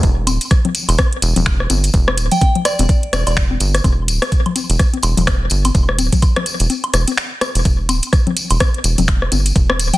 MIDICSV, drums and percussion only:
0, 0, Header, 1, 2, 480
1, 0, Start_track
1, 0, Key_signature, 1, "minor"
1, 0, Tempo, 476190
1, 33, Time_signature, 4, 2, 24, 8
1, 10057, End_track
2, 0, Start_track
2, 0, Title_t, "Drums"
2, 32, Note_on_c, 9, 42, 42
2, 34, Note_on_c, 9, 36, 120
2, 34, Note_on_c, 9, 54, 37
2, 133, Note_off_c, 9, 42, 0
2, 134, Note_off_c, 9, 36, 0
2, 135, Note_off_c, 9, 54, 0
2, 272, Note_on_c, 9, 42, 91
2, 272, Note_on_c, 9, 63, 46
2, 272, Note_on_c, 9, 76, 64
2, 273, Note_on_c, 9, 54, 98
2, 373, Note_off_c, 9, 42, 0
2, 373, Note_off_c, 9, 54, 0
2, 373, Note_off_c, 9, 63, 0
2, 373, Note_off_c, 9, 76, 0
2, 412, Note_on_c, 9, 54, 51
2, 414, Note_on_c, 9, 42, 52
2, 510, Note_off_c, 9, 54, 0
2, 510, Note_on_c, 9, 54, 36
2, 513, Note_off_c, 9, 42, 0
2, 513, Note_on_c, 9, 37, 40
2, 513, Note_on_c, 9, 42, 42
2, 514, Note_on_c, 9, 36, 127
2, 611, Note_off_c, 9, 54, 0
2, 614, Note_off_c, 9, 36, 0
2, 614, Note_off_c, 9, 37, 0
2, 614, Note_off_c, 9, 42, 0
2, 654, Note_on_c, 9, 42, 35
2, 654, Note_on_c, 9, 63, 44
2, 654, Note_on_c, 9, 64, 88
2, 753, Note_off_c, 9, 42, 0
2, 753, Note_on_c, 9, 42, 91
2, 755, Note_off_c, 9, 63, 0
2, 755, Note_off_c, 9, 64, 0
2, 759, Note_on_c, 9, 54, 83
2, 854, Note_off_c, 9, 42, 0
2, 860, Note_off_c, 9, 54, 0
2, 894, Note_on_c, 9, 42, 53
2, 894, Note_on_c, 9, 76, 71
2, 898, Note_on_c, 9, 54, 61
2, 990, Note_off_c, 9, 54, 0
2, 990, Note_on_c, 9, 54, 41
2, 993, Note_off_c, 9, 42, 0
2, 993, Note_on_c, 9, 36, 119
2, 993, Note_on_c, 9, 42, 41
2, 994, Note_on_c, 9, 37, 79
2, 994, Note_on_c, 9, 63, 46
2, 995, Note_off_c, 9, 76, 0
2, 1091, Note_off_c, 9, 54, 0
2, 1094, Note_off_c, 9, 36, 0
2, 1094, Note_off_c, 9, 42, 0
2, 1095, Note_off_c, 9, 37, 0
2, 1095, Note_off_c, 9, 63, 0
2, 1134, Note_on_c, 9, 42, 38
2, 1232, Note_on_c, 9, 54, 96
2, 1233, Note_off_c, 9, 42, 0
2, 1233, Note_on_c, 9, 42, 98
2, 1333, Note_off_c, 9, 54, 0
2, 1334, Note_off_c, 9, 42, 0
2, 1374, Note_on_c, 9, 42, 51
2, 1374, Note_on_c, 9, 63, 47
2, 1374, Note_on_c, 9, 64, 81
2, 1376, Note_on_c, 9, 54, 49
2, 1472, Note_off_c, 9, 42, 0
2, 1472, Note_on_c, 9, 26, 102
2, 1472, Note_on_c, 9, 42, 41
2, 1474, Note_on_c, 9, 36, 126
2, 1474, Note_on_c, 9, 76, 68
2, 1475, Note_off_c, 9, 63, 0
2, 1475, Note_off_c, 9, 64, 0
2, 1477, Note_off_c, 9, 54, 0
2, 1573, Note_off_c, 9, 26, 0
2, 1573, Note_off_c, 9, 42, 0
2, 1574, Note_off_c, 9, 36, 0
2, 1574, Note_off_c, 9, 76, 0
2, 1615, Note_on_c, 9, 37, 37
2, 1712, Note_on_c, 9, 42, 94
2, 1712, Note_on_c, 9, 54, 92
2, 1713, Note_on_c, 9, 63, 45
2, 1716, Note_off_c, 9, 37, 0
2, 1813, Note_off_c, 9, 42, 0
2, 1813, Note_off_c, 9, 54, 0
2, 1814, Note_off_c, 9, 63, 0
2, 1853, Note_on_c, 9, 42, 51
2, 1854, Note_on_c, 9, 54, 54
2, 1953, Note_off_c, 9, 42, 0
2, 1953, Note_off_c, 9, 54, 0
2, 1953, Note_on_c, 9, 42, 44
2, 1953, Note_on_c, 9, 54, 43
2, 1954, Note_on_c, 9, 36, 117
2, 2054, Note_off_c, 9, 36, 0
2, 2054, Note_off_c, 9, 42, 0
2, 2054, Note_off_c, 9, 54, 0
2, 2095, Note_on_c, 9, 37, 78
2, 2095, Note_on_c, 9, 63, 44
2, 2095, Note_on_c, 9, 76, 66
2, 2192, Note_on_c, 9, 54, 87
2, 2193, Note_on_c, 9, 42, 87
2, 2196, Note_off_c, 9, 37, 0
2, 2196, Note_off_c, 9, 63, 0
2, 2196, Note_off_c, 9, 76, 0
2, 2293, Note_off_c, 9, 42, 0
2, 2293, Note_off_c, 9, 54, 0
2, 2334, Note_on_c, 9, 42, 53
2, 2335, Note_on_c, 9, 64, 87
2, 2336, Note_on_c, 9, 54, 55
2, 2427, Note_off_c, 9, 54, 0
2, 2427, Note_on_c, 9, 54, 35
2, 2434, Note_off_c, 9, 42, 0
2, 2434, Note_on_c, 9, 36, 121
2, 2434, Note_on_c, 9, 42, 44
2, 2434, Note_on_c, 9, 63, 46
2, 2436, Note_off_c, 9, 64, 0
2, 2528, Note_off_c, 9, 54, 0
2, 2534, Note_off_c, 9, 36, 0
2, 2534, Note_off_c, 9, 42, 0
2, 2534, Note_off_c, 9, 63, 0
2, 2574, Note_on_c, 9, 42, 34
2, 2575, Note_on_c, 9, 64, 89
2, 2672, Note_off_c, 9, 42, 0
2, 2672, Note_on_c, 9, 42, 88
2, 2672, Note_on_c, 9, 54, 92
2, 2673, Note_on_c, 9, 37, 39
2, 2673, Note_on_c, 9, 76, 68
2, 2676, Note_off_c, 9, 64, 0
2, 2773, Note_off_c, 9, 42, 0
2, 2773, Note_off_c, 9, 54, 0
2, 2774, Note_off_c, 9, 37, 0
2, 2774, Note_off_c, 9, 76, 0
2, 2810, Note_on_c, 9, 54, 54
2, 2814, Note_on_c, 9, 42, 54
2, 2816, Note_on_c, 9, 63, 45
2, 2911, Note_off_c, 9, 54, 0
2, 2914, Note_off_c, 9, 42, 0
2, 2914, Note_on_c, 9, 36, 119
2, 2914, Note_on_c, 9, 42, 43
2, 2915, Note_on_c, 9, 54, 38
2, 2917, Note_off_c, 9, 63, 0
2, 3014, Note_off_c, 9, 36, 0
2, 3015, Note_off_c, 9, 42, 0
2, 3016, Note_off_c, 9, 54, 0
2, 3056, Note_on_c, 9, 42, 38
2, 3155, Note_off_c, 9, 42, 0
2, 3155, Note_on_c, 9, 37, 79
2, 3155, Note_on_c, 9, 42, 91
2, 3155, Note_on_c, 9, 63, 46
2, 3156, Note_on_c, 9, 54, 95
2, 3256, Note_off_c, 9, 37, 0
2, 3256, Note_off_c, 9, 42, 0
2, 3256, Note_off_c, 9, 54, 0
2, 3256, Note_off_c, 9, 63, 0
2, 3291, Note_on_c, 9, 54, 50
2, 3295, Note_on_c, 9, 42, 51
2, 3295, Note_on_c, 9, 76, 70
2, 3392, Note_off_c, 9, 54, 0
2, 3394, Note_off_c, 9, 42, 0
2, 3394, Note_on_c, 9, 26, 99
2, 3394, Note_on_c, 9, 36, 125
2, 3394, Note_on_c, 9, 42, 44
2, 3396, Note_off_c, 9, 76, 0
2, 3402, Note_on_c, 9, 54, 38
2, 3494, Note_off_c, 9, 36, 0
2, 3495, Note_off_c, 9, 26, 0
2, 3495, Note_off_c, 9, 42, 0
2, 3503, Note_off_c, 9, 54, 0
2, 3535, Note_on_c, 9, 63, 45
2, 3631, Note_on_c, 9, 54, 80
2, 3634, Note_on_c, 9, 42, 93
2, 3636, Note_off_c, 9, 63, 0
2, 3731, Note_off_c, 9, 54, 0
2, 3735, Note_off_c, 9, 42, 0
2, 3773, Note_on_c, 9, 54, 51
2, 3775, Note_on_c, 9, 42, 54
2, 3776, Note_on_c, 9, 37, 41
2, 3874, Note_off_c, 9, 54, 0
2, 3874, Note_on_c, 9, 36, 117
2, 3874, Note_on_c, 9, 63, 44
2, 3874, Note_on_c, 9, 76, 70
2, 3875, Note_off_c, 9, 42, 0
2, 3875, Note_on_c, 9, 42, 45
2, 3876, Note_off_c, 9, 37, 0
2, 3876, Note_on_c, 9, 54, 37
2, 3974, Note_off_c, 9, 63, 0
2, 3974, Note_off_c, 9, 76, 0
2, 3975, Note_off_c, 9, 36, 0
2, 3976, Note_off_c, 9, 42, 0
2, 3977, Note_off_c, 9, 54, 0
2, 4115, Note_on_c, 9, 42, 89
2, 4121, Note_on_c, 9, 54, 91
2, 4215, Note_off_c, 9, 42, 0
2, 4222, Note_off_c, 9, 54, 0
2, 4254, Note_on_c, 9, 37, 90
2, 4254, Note_on_c, 9, 63, 46
2, 4255, Note_on_c, 9, 54, 49
2, 4256, Note_on_c, 9, 42, 58
2, 4354, Note_off_c, 9, 42, 0
2, 4354, Note_on_c, 9, 36, 118
2, 4354, Note_on_c, 9, 42, 46
2, 4355, Note_off_c, 9, 37, 0
2, 4355, Note_off_c, 9, 63, 0
2, 4356, Note_off_c, 9, 54, 0
2, 4359, Note_on_c, 9, 54, 32
2, 4455, Note_off_c, 9, 36, 0
2, 4455, Note_off_c, 9, 42, 0
2, 4460, Note_off_c, 9, 54, 0
2, 4494, Note_on_c, 9, 42, 33
2, 4495, Note_on_c, 9, 64, 90
2, 4495, Note_on_c, 9, 76, 69
2, 4593, Note_off_c, 9, 42, 0
2, 4593, Note_on_c, 9, 42, 88
2, 4593, Note_on_c, 9, 63, 43
2, 4595, Note_on_c, 9, 54, 88
2, 4596, Note_off_c, 9, 64, 0
2, 4596, Note_off_c, 9, 76, 0
2, 4694, Note_off_c, 9, 42, 0
2, 4694, Note_off_c, 9, 63, 0
2, 4696, Note_off_c, 9, 54, 0
2, 4734, Note_on_c, 9, 42, 59
2, 4736, Note_on_c, 9, 54, 58
2, 4833, Note_off_c, 9, 42, 0
2, 4833, Note_on_c, 9, 37, 43
2, 4833, Note_on_c, 9, 42, 44
2, 4834, Note_on_c, 9, 36, 120
2, 4836, Note_off_c, 9, 54, 0
2, 4836, Note_on_c, 9, 54, 40
2, 4934, Note_off_c, 9, 37, 0
2, 4934, Note_off_c, 9, 42, 0
2, 4935, Note_off_c, 9, 36, 0
2, 4937, Note_off_c, 9, 54, 0
2, 4974, Note_on_c, 9, 63, 43
2, 4975, Note_on_c, 9, 42, 37
2, 5066, Note_on_c, 9, 54, 88
2, 5072, Note_on_c, 9, 76, 71
2, 5074, Note_off_c, 9, 42, 0
2, 5074, Note_off_c, 9, 63, 0
2, 5074, Note_on_c, 9, 42, 88
2, 5167, Note_off_c, 9, 54, 0
2, 5173, Note_off_c, 9, 76, 0
2, 5175, Note_off_c, 9, 42, 0
2, 5214, Note_on_c, 9, 54, 48
2, 5214, Note_on_c, 9, 64, 84
2, 5216, Note_on_c, 9, 42, 54
2, 5314, Note_on_c, 9, 36, 121
2, 5314, Note_on_c, 9, 37, 84
2, 5314, Note_on_c, 9, 63, 45
2, 5315, Note_off_c, 9, 42, 0
2, 5315, Note_off_c, 9, 54, 0
2, 5315, Note_off_c, 9, 64, 0
2, 5315, Note_on_c, 9, 26, 107
2, 5315, Note_on_c, 9, 42, 45
2, 5316, Note_on_c, 9, 54, 37
2, 5414, Note_off_c, 9, 37, 0
2, 5414, Note_off_c, 9, 63, 0
2, 5415, Note_off_c, 9, 36, 0
2, 5416, Note_off_c, 9, 26, 0
2, 5416, Note_off_c, 9, 42, 0
2, 5417, Note_off_c, 9, 54, 0
2, 5541, Note_on_c, 9, 54, 89
2, 5554, Note_on_c, 9, 42, 89
2, 5642, Note_off_c, 9, 54, 0
2, 5655, Note_off_c, 9, 42, 0
2, 5693, Note_on_c, 9, 54, 51
2, 5694, Note_on_c, 9, 42, 57
2, 5696, Note_on_c, 9, 63, 44
2, 5696, Note_on_c, 9, 76, 70
2, 5790, Note_off_c, 9, 54, 0
2, 5790, Note_on_c, 9, 54, 39
2, 5793, Note_on_c, 9, 36, 117
2, 5794, Note_off_c, 9, 42, 0
2, 5794, Note_on_c, 9, 42, 46
2, 5797, Note_off_c, 9, 63, 0
2, 5797, Note_off_c, 9, 76, 0
2, 5890, Note_off_c, 9, 54, 0
2, 5894, Note_off_c, 9, 36, 0
2, 5895, Note_off_c, 9, 42, 0
2, 5935, Note_on_c, 9, 37, 43
2, 6033, Note_on_c, 9, 42, 87
2, 6034, Note_on_c, 9, 63, 46
2, 6035, Note_off_c, 9, 37, 0
2, 6035, Note_on_c, 9, 54, 94
2, 6134, Note_off_c, 9, 42, 0
2, 6135, Note_off_c, 9, 63, 0
2, 6136, Note_off_c, 9, 54, 0
2, 6173, Note_on_c, 9, 54, 53
2, 6174, Note_on_c, 9, 42, 57
2, 6175, Note_on_c, 9, 36, 61
2, 6175, Note_on_c, 9, 64, 87
2, 6268, Note_off_c, 9, 54, 0
2, 6268, Note_on_c, 9, 54, 39
2, 6273, Note_off_c, 9, 36, 0
2, 6273, Note_off_c, 9, 42, 0
2, 6273, Note_on_c, 9, 36, 114
2, 6273, Note_on_c, 9, 42, 46
2, 6273, Note_on_c, 9, 76, 70
2, 6276, Note_off_c, 9, 64, 0
2, 6369, Note_off_c, 9, 54, 0
2, 6374, Note_off_c, 9, 36, 0
2, 6374, Note_off_c, 9, 42, 0
2, 6374, Note_off_c, 9, 76, 0
2, 6415, Note_on_c, 9, 37, 85
2, 6415, Note_on_c, 9, 42, 36
2, 6415, Note_on_c, 9, 63, 45
2, 6415, Note_on_c, 9, 64, 95
2, 6512, Note_off_c, 9, 42, 0
2, 6512, Note_on_c, 9, 42, 90
2, 6516, Note_off_c, 9, 37, 0
2, 6516, Note_off_c, 9, 63, 0
2, 6516, Note_off_c, 9, 64, 0
2, 6520, Note_on_c, 9, 54, 97
2, 6613, Note_off_c, 9, 42, 0
2, 6621, Note_off_c, 9, 54, 0
2, 6647, Note_on_c, 9, 54, 58
2, 6653, Note_on_c, 9, 42, 55
2, 6747, Note_off_c, 9, 54, 0
2, 6752, Note_off_c, 9, 42, 0
2, 6752, Note_on_c, 9, 42, 44
2, 6752, Note_on_c, 9, 63, 44
2, 6762, Note_on_c, 9, 54, 39
2, 6853, Note_off_c, 9, 42, 0
2, 6853, Note_off_c, 9, 63, 0
2, 6863, Note_off_c, 9, 54, 0
2, 6893, Note_on_c, 9, 42, 37
2, 6893, Note_on_c, 9, 76, 66
2, 6991, Note_off_c, 9, 42, 0
2, 6991, Note_on_c, 9, 42, 93
2, 6993, Note_on_c, 9, 37, 43
2, 6994, Note_off_c, 9, 76, 0
2, 7000, Note_on_c, 9, 54, 94
2, 7092, Note_off_c, 9, 42, 0
2, 7094, Note_off_c, 9, 37, 0
2, 7100, Note_off_c, 9, 54, 0
2, 7129, Note_on_c, 9, 54, 51
2, 7132, Note_on_c, 9, 42, 56
2, 7134, Note_on_c, 9, 63, 46
2, 7230, Note_off_c, 9, 54, 0
2, 7232, Note_off_c, 9, 42, 0
2, 7232, Note_on_c, 9, 26, 108
2, 7232, Note_on_c, 9, 42, 45
2, 7235, Note_off_c, 9, 63, 0
2, 7238, Note_on_c, 9, 54, 37
2, 7333, Note_off_c, 9, 26, 0
2, 7333, Note_off_c, 9, 42, 0
2, 7339, Note_off_c, 9, 54, 0
2, 7473, Note_on_c, 9, 37, 81
2, 7473, Note_on_c, 9, 42, 88
2, 7473, Note_on_c, 9, 54, 85
2, 7473, Note_on_c, 9, 63, 43
2, 7473, Note_on_c, 9, 76, 66
2, 7573, Note_off_c, 9, 54, 0
2, 7574, Note_off_c, 9, 37, 0
2, 7574, Note_off_c, 9, 42, 0
2, 7574, Note_off_c, 9, 63, 0
2, 7574, Note_off_c, 9, 76, 0
2, 7611, Note_on_c, 9, 54, 53
2, 7614, Note_on_c, 9, 42, 60
2, 7712, Note_off_c, 9, 54, 0
2, 7713, Note_off_c, 9, 42, 0
2, 7713, Note_on_c, 9, 42, 45
2, 7714, Note_on_c, 9, 36, 124
2, 7715, Note_on_c, 9, 54, 43
2, 7814, Note_off_c, 9, 36, 0
2, 7814, Note_off_c, 9, 42, 0
2, 7816, Note_off_c, 9, 54, 0
2, 7953, Note_on_c, 9, 42, 93
2, 7953, Note_on_c, 9, 63, 46
2, 7953, Note_on_c, 9, 76, 66
2, 7954, Note_on_c, 9, 54, 97
2, 8053, Note_off_c, 9, 63, 0
2, 8053, Note_off_c, 9, 76, 0
2, 8054, Note_off_c, 9, 42, 0
2, 8055, Note_off_c, 9, 54, 0
2, 8089, Note_on_c, 9, 54, 53
2, 8093, Note_on_c, 9, 42, 58
2, 8189, Note_off_c, 9, 54, 0
2, 8190, Note_on_c, 9, 54, 41
2, 8192, Note_on_c, 9, 37, 43
2, 8193, Note_off_c, 9, 42, 0
2, 8193, Note_on_c, 9, 36, 126
2, 8193, Note_on_c, 9, 42, 43
2, 8291, Note_off_c, 9, 54, 0
2, 8292, Note_off_c, 9, 37, 0
2, 8294, Note_off_c, 9, 36, 0
2, 8294, Note_off_c, 9, 42, 0
2, 8334, Note_on_c, 9, 42, 36
2, 8334, Note_on_c, 9, 63, 45
2, 8334, Note_on_c, 9, 64, 100
2, 8433, Note_off_c, 9, 42, 0
2, 8433, Note_on_c, 9, 42, 94
2, 8433, Note_on_c, 9, 54, 87
2, 8434, Note_off_c, 9, 63, 0
2, 8434, Note_off_c, 9, 64, 0
2, 8534, Note_off_c, 9, 42, 0
2, 8534, Note_off_c, 9, 54, 0
2, 8564, Note_on_c, 9, 54, 53
2, 8573, Note_on_c, 9, 42, 57
2, 8574, Note_on_c, 9, 76, 69
2, 8665, Note_off_c, 9, 54, 0
2, 8672, Note_off_c, 9, 42, 0
2, 8672, Note_on_c, 9, 42, 44
2, 8673, Note_on_c, 9, 36, 118
2, 8674, Note_on_c, 9, 37, 86
2, 8674, Note_on_c, 9, 63, 45
2, 8675, Note_off_c, 9, 76, 0
2, 8773, Note_off_c, 9, 42, 0
2, 8774, Note_off_c, 9, 36, 0
2, 8774, Note_off_c, 9, 37, 0
2, 8774, Note_off_c, 9, 63, 0
2, 8814, Note_on_c, 9, 42, 38
2, 8912, Note_off_c, 9, 42, 0
2, 8912, Note_on_c, 9, 42, 96
2, 8915, Note_on_c, 9, 54, 102
2, 9013, Note_off_c, 9, 42, 0
2, 9016, Note_off_c, 9, 54, 0
2, 9053, Note_on_c, 9, 63, 46
2, 9053, Note_on_c, 9, 64, 89
2, 9054, Note_on_c, 9, 42, 55
2, 9056, Note_on_c, 9, 54, 50
2, 9152, Note_on_c, 9, 76, 68
2, 9153, Note_off_c, 9, 42, 0
2, 9153, Note_on_c, 9, 26, 114
2, 9153, Note_on_c, 9, 36, 125
2, 9153, Note_on_c, 9, 42, 46
2, 9154, Note_off_c, 9, 63, 0
2, 9154, Note_off_c, 9, 64, 0
2, 9157, Note_off_c, 9, 54, 0
2, 9253, Note_off_c, 9, 76, 0
2, 9254, Note_off_c, 9, 26, 0
2, 9254, Note_off_c, 9, 36, 0
2, 9254, Note_off_c, 9, 42, 0
2, 9295, Note_on_c, 9, 37, 41
2, 9393, Note_on_c, 9, 42, 92
2, 9393, Note_on_c, 9, 63, 46
2, 9395, Note_on_c, 9, 54, 85
2, 9396, Note_off_c, 9, 37, 0
2, 9494, Note_off_c, 9, 42, 0
2, 9494, Note_off_c, 9, 63, 0
2, 9495, Note_off_c, 9, 54, 0
2, 9531, Note_on_c, 9, 54, 57
2, 9534, Note_on_c, 9, 42, 59
2, 9630, Note_off_c, 9, 54, 0
2, 9630, Note_on_c, 9, 54, 38
2, 9633, Note_on_c, 9, 36, 127
2, 9634, Note_off_c, 9, 42, 0
2, 9634, Note_on_c, 9, 42, 43
2, 9731, Note_off_c, 9, 54, 0
2, 9734, Note_off_c, 9, 36, 0
2, 9735, Note_off_c, 9, 42, 0
2, 9774, Note_on_c, 9, 37, 81
2, 9774, Note_on_c, 9, 63, 47
2, 9774, Note_on_c, 9, 76, 64
2, 9874, Note_off_c, 9, 37, 0
2, 9874, Note_off_c, 9, 63, 0
2, 9874, Note_off_c, 9, 76, 0
2, 9874, Note_on_c, 9, 42, 94
2, 9876, Note_on_c, 9, 54, 89
2, 9974, Note_off_c, 9, 42, 0
2, 9976, Note_off_c, 9, 54, 0
2, 10013, Note_on_c, 9, 64, 94
2, 10015, Note_on_c, 9, 42, 57
2, 10019, Note_on_c, 9, 54, 55
2, 10057, Note_off_c, 9, 42, 0
2, 10057, Note_off_c, 9, 54, 0
2, 10057, Note_off_c, 9, 64, 0
2, 10057, End_track
0, 0, End_of_file